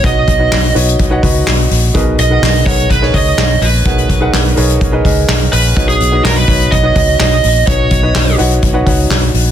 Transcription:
<<
  \new Staff \with { instrumentName = "Lead electric guitar" } { \time 4/4 \key b \major \tempo 4 = 126 dis''4. r2 r8 | r8 dis''4 cis''8 b'8 dis''4 b'8~ | b'4. r2 b'8~ | b'16 gis'8. ais'16 b'8. dis''4 dis''4 |
cis''4. r2 r8 | }
  \new Staff \with { instrumentName = "Grand piano" } { \time 4/4 \key b \major <dis' fis' b' cis'' fis''>8 r16 <dis' fis' b' cis'' dis''>8 r16 <dis' fis' b' cis'' dis''>8 r16 <dis' fis' b' cis'' fis''>16 <dis' fis' b' cis'' dis''>4~ <dis' fis' b' cis'' dis''>16 r16 | <dis' gis' ais' b' dis''>8 r16 <dis' gis' ais' b' fis''>8 r16 <dis' gis' ais' b' fis''>8 r16 <dis' gis' ais' b' cis''>16 <dis' gis' ais' b' cis''>4~ <dis' gis' ais' b' cis''>16 r16 | <dis' gis' ais' b' fis''>8 r16 <dis' gis' ais' b' fis''>8 r16 <dis' gis' ais' b' cis''>8 r16 <dis' gis' ais' b' dis''>16 <dis' gis' ais' b' dis''>4~ <dis' gis' ais' b' dis''>16 r16 | <dis' fis' b' cis'' dis''>8 r16 <dis' fis' b' cis'' dis''>8 r16 <dis' fis' b' cis'' dis''>8 r16 <dis' fis' b' cis'' dis''>16 <dis' fis' b' cis'' dis''>4~ <dis' fis' b' cis'' dis''>16 r16 |
<dis' fis' b' cis'' dis''>8 r16 <dis' fis' b' cis'' dis''>8 r16 <dis' fis' b' cis'' fis''>8 r16 <dis' fis' b' cis'' fis''>16 <dis' fis' b' cis'' fis''>4~ <dis' fis' b' cis'' fis''>16 r16 | }
  \new Staff \with { instrumentName = "Grand piano" } { \clef bass \time 4/4 \key b \major b,4. r2 r8 | b,4. r2 r8 | b,4. r2 r8 | b,4. r2 r8 |
b,4. r2 r8 | }
  \new Staff \with { instrumentName = "Fingered electric bass" } { \clef bass \time 4/4 \key b \major r8 b,,8 b,,8 b,,8 b,,8 cis,8 b,,8 ais,,8 | r8 b,,8 b,,8 b,,8 b,,8 cis,8 b,,8 ais,,8 | r8 b,,8 b,,8 b,,8 b,,8 cis,8 b,,8 ais,,8 | b,,8 b,,8 b,,8 b,,8 b,,8 cis,8 b,,8 ais,,8 |
b,,8 b,,8 b,,8 b,,8 b,,8 cis,8 b,,8 ais,,8 | }
  \new DrumStaff \with { instrumentName = "Drums" } \drummode { \time 4/4 <hho hhp bd>8 <hho hhp bd>8 <hc hho hhp sn>16 hho16 <hho hhp>16 hhp16 <hho hhp bd>8 <hho hhp bd>8 <hc hho hhp sn>8 <hho hhp>8 | <hho hhp bd>8 <hho hhp>8 <hc hho hhp sn>16 hho16 <hho hhp bd>16 hhp16 <hho hhp bd>16 sn16 <hho hhp bd>8 <hc sn>8 <hho hhp>16 hho16 | <hho hhp bd>16 hhp16 <hho hhp bd>8 <hc hho hhp sn>16 hho16 <hho hhp>16 hhp16 <hho hhp bd>8 <hho hhp bd>8 <hc hho hhp sn>8 <hho hhp>16 hho16 | <hho hhp bd>16 hhp16 <hho hhp>8 <hc hho hhp sn>16 hho16 <hho hhp bd>16 hhp16 <hho hhp bd>8 <hho hhp bd>8 <hc hho hhp sn>8 <hho hhp>8 |
<hho hhp bd>8 <hho hhp bd>8 <hc hho hhp sn>16 hho16 <hho hhp>16 hhp16 <hho hhp bd>8 <hho hhp bd>8 <hc hho hhp sn>8 <hho hhp>8 | }
>>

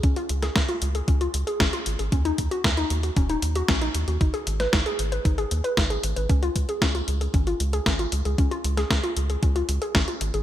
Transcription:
<<
  \new Staff \with { instrumentName = "Synth arpeggio sound" } { \time 4/4 \key des \mixolydian \tempo 4 = 115 des'16 f'16 r16 aes'16 des'16 f'16 r16 aes'16 des'16 f'16 r16 aes'16 des'16 f'16 r16 aes'16 | des'16 ees'16 r16 ges'16 des'16 ees'16 r16 ges'16 des'16 ees'16 r16 ges'16 des'16 ees'16 r16 ges'16 | ees'16 aes'16 r16 ces''16 ees'16 aes'16 r16 ces''16 ees'16 aes'16 r16 ces''16 ees'16 aes'16 r16 ces''16 | des'16 f'16 r16 aes'16 des'16 f'16 r16 aes'16 des'16 f'16 r16 aes'16 des'16 f'16 r16 aes'16 |
des'16 f'16 r16 aes'16 des'16 f'16 r16 aes'16 des'16 f'16 r16 aes'16 des'16 f'16 r16 aes'16 | }
  \new Staff \with { instrumentName = "Analog synth bass" } { \clef bass \time 4/4 \key des \mixolydian des,16 r16 des,8 des,16 r16 des,8 des,8 des,16 r16 aes,,16 r16 aes,,16 aes,,16 | ees,8 ees,16 r16 ees,8 ees,8 ees,,8 ees,8 bes,,8 ees,16 ees,16 | aes,,16 r16 aes,,8 aes,,16 r16 aes,,8 aes,,8 ees,16 r16 aes,,8 aes,,16 aes,,16 | des,8 des,16 r16 des,8 des,8 aes,,8 des,8 aes,,8 des,16 des,16 |
des,16 r16 des,8 des,16 r16 des,8 des,8 des,16 r16 aes,,16 r16 aes,,16 aes,,16 | }
  \new DrumStaff \with { instrumentName = "Drums" } \drummode { \time 4/4 <hh bd>16 hh16 hh16 <hh sn>16 <hh bd sn>16 hh16 hh16 hh16 <hh bd>16 hh16 hh16 hh16 <hh bd sn>16 hh16 hh16 hh16 | <hh bd>16 hh16 <hh bd>16 hh16 <hh bd sn>16 hh16 hh16 hh16 <hh bd>16 hh16 hh16 hh16 <hh bd sn>16 hh16 hh16 hh16 | <hh bd>16 hh16 hh16 <hh sn>16 <hh bd sn>16 hh16 hh16 hh16 <hh bd>16 hh16 hh16 hh16 <hh bd sn>16 hh16 hh16 hh16 | <hh bd>16 hh16 <hh bd>16 hh16 <hh bd sn>16 hh16 hh16 hh16 <hh bd>16 hh16 hh16 hh16 <hh bd sn>16 hh16 hh16 hh16 |
<hh bd>16 hh16 hh16 <hh sn>16 <hh bd sn>16 hh16 hh16 hh16 <hh bd>16 hh16 hh16 hh16 <hh bd sn>16 hh16 hh16 hh16 | }
>>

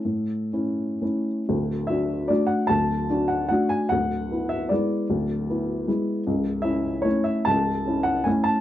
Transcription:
\new Staff \with { instrumentName = "Upright piano" } { \time 3/4 \key a \major \tempo 4 = 151 << { a'2~ a'8 r8 | r4 e''4 d''8 fis''8 | a''4. fis''8 fis''8 gis''8 | fis''4. e''8 d''4~ |
d''2. | r4 e''4 cis''8 e''8 | a''4. fis''8 gis''8 a''8 | } \\ { a,4 <cis' e'>4 <a cis' e'>4 | <d,, d,>4 <d' fis'>4 <a d' fis'>4 | <d,, d,>4 <d' fis'>4 <a d' fis'>4 | <d,, d,>4 <b e'>4 <gis b e'>4 |
<d,, d,>4 <b e'>4 <gis b e'>4 | <cis,, cis,>4 <cis' e'>4 <a cis' e'>4 | <cis,, cis,>4 <cis' e'>4 <a cis' e'>4 | } >> }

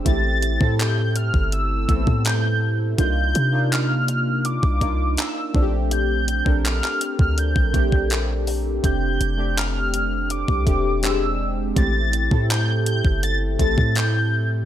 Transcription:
<<
  \new Staff \with { instrumentName = "Soft synth lead" } { \time 4/4 \key a \phrygian \tempo 4 = 82 a'''4 g'''8 f'''8 e'''4 g'''8. r16 | g'''4 f'''4 d'''4 e'''8. r16 | g'''4 f'''8. f'''16 g'''4. r8 | g'''4 f'''4 d'''4 e'''8. r16 |
a'''4 g'''8 g'''8 a'''8 a'''8 g'''8. r16 | }
  \new Staff \with { instrumentName = "Synth keys" } { \time 4/4 \key a \phrygian <a c' e' g'>8 r16 <a c' e' a'>4~ <a c' e' a'>16 r8 <a b c' e' a'>4 r8 | <bes d' ees' f'>8 r16 <bes d' ees' f'>4~ <bes d' ees' f'>16 r8 <bes d' ees' f'>4 <a c' d' f' g'>8~ | <a c' d' f' g'>8 r16 <c' d' a' bes'>4~ <c' d' a' bes'>16 r8 <a c' d' g'>4 r8 | <a c' d' g'>8 r16 <a c' d' g'>4~ <a c' d' g'>16 r8 <a c' d' g'>8 <g gis bis d' g'>8. r16 |
<a c' e' g'>8 r16 <a c' e' a'>4~ <a c' e' a'>16 r8 <a c' e' a'>4 r8 | }
  \new Staff \with { instrumentName = "808-style bass" } { \clef bass \time 4/4 \key a \phrygian a,,8. a,4 g,,8. a,,16 a,4~ a,16 | c,8 c4.~ c16 c,16 c,8 r8 bes,,8~ | bes,,8. bes,,8 r8 d,8 bes,,16 bes,,4. | f,,8 f,,4.~ f,,16 c,16 e,,4. |
a,,8. a,4 g,,8. a,,16 a,4~ a,16 | }
  \new DrumStaff \with { instrumentName = "Drums" } \drummode { \time 4/4 <hh bd>8 hh16 bd16 <hc hh>8 hh16 bd16 hh8 <hh bd>16 bd16 <hc hh>4 | <hh bd>8 hh8 <hc hh>8 hh8 hh16 bd16 <hh bd>8 <hc hh>8 bd8 | hh8 hh16 bd16 <hc hh>16 hc16 hh16 bd16 hh16 bd16 <hh bd>16 bd16 <hc hh>8 hho8 | <hh bd>8 hh8 <hc hh>8 hh8 hh16 bd16 <hh bd>8 <hc hh>4 |
<hh bd>8 hh16 bd16 <hc hh>8 hh16 bd16 hh8 <hh bd>16 bd16 <hc hh>4 | }
>>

